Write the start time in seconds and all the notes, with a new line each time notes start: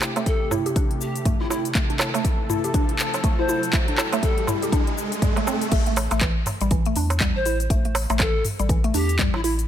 Already playing: C3 A3 G4, riser
0.01 E4, clap, darbuka tek, shaker
0.16 A3, closed hi-hat, darbuka ka, darbuka tek, shaker
0.26 A4, kick, closed hi-hat, shaker
0.51 E4, mid tom, darbuka tek, shaker
0.66 G4, closed hi-hat, shaker
0.76 D4, kick, closed hi-hat, shaker
0.91 closed hi-hat
1.01 G4, shaker
1.16 closed hi-hat, shaker
1.25 A3, kick, closed hi-hat, mid tom, shaker
1.40 E4
1.50 E4, darbuka ka, shaker
1.65 closed hi-hat, shaker
1.75 A3 A4, kick, clap, closed hi-hat, shaker
1.90 D4, closed hi-hat
1.99 E4, clap, darbuka tek, shaker
2.14 A3, closed hi-hat, darbuka ka, shaker
2.25 kick, closed hi-hat, shaker
2.49 E4, mid tom, shaker
2.64 G4, closed hi-hat, shaker
2.74 D4, kick, closed hi-hat, shaker
2.89 closed hi-hat
2.99 clap, shaker
3.14 closed hi-hat, darbuka ka, shaker
3.24 A3, kick, closed hi-hat, shaker
3.38 E4 C5
3.49 E4, shaker
3.63 closed hi-hat, shaker
3.73 A3, kick, clap, closed hi-hat, shaker
3.88 D4, closed hi-hat
3.98 E4, clap, darbuka tek, shaker
4.12 A3, closed hi-hat, darbuka ka, darbuka tek, shaker
4.23 A4, kick, closed hi-hat, shaker
4.38 closed hi-hat
4.47 E4, mid tom, darbuka tek, shaker
4.62 G4, closed hi-hat, shaker
4.72 D4, kick, closed hi-hat, shaker
4.87 closed hi-hat
4.98 shaker
5.12 closed hi-hat, shaker
5.22 G3, kick, closed hi-hat, mid tom, shaker
5.36 A3, closed hi-hat, darbuka tek
5.47 C4, darbuka ka, shaker
5.61 closed hi-hat, shaker
5.72 A1 A3, kick, closed hi-hat, crash, shaker
5.86 A3, closed hi-hat
5.96 open hi-hat, darbuka tek, shaker
6.11 A1 A3, closed hi-hat, darbuka ka, darbuka tek, shaker
6.21 E3, kick, clap, closed hi-hat, darbuka tek, shaker
6.46 mid tom, open hi-hat, darbuka tek, shaker
6.61 A1 G3, closed hi-hat, shaker
6.71 E3, kick, closed hi-hat, shaker
6.85 A3, closed hi-hat
6.96 E2 D4, open hi-hat, shaker
7.10 closed hi-hat, darbuka ka, shaker
7.20 G3, kick, clap, closed hi-hat, shaker
7.35 A1 C5
7.45 E4, open hi-hat, shaker
7.60 closed hi-hat, shaker
7.70 A1 A3, kick, closed hi-hat, shaker
7.85 A3, closed hi-hat
7.95 open hi-hat, darbuka tek, shaker
8.10 A1 A3, closed hi-hat, darbuka ka, darbuka tek, shaker
8.19 E3 A4, kick, clap, closed hi-hat, darbuka tek, shaker
8.45 mid tom, open hi-hat, shaker
8.59 A1 G3, closed hi-hat, shaker
8.69 E3, kick, closed hi-hat, shaker
8.84 A3, closed hi-hat
8.94 E2 D4 G4, open hi-hat, shaker
9.09 closed hi-hat, shaker
9.19 G3, kick, clap, closed hi-hat, mid tom, shaker
9.34 A1 E4, darbuka tek
9.43 E4, open hi-hat, shaker
9.59 closed hi-hat, shaker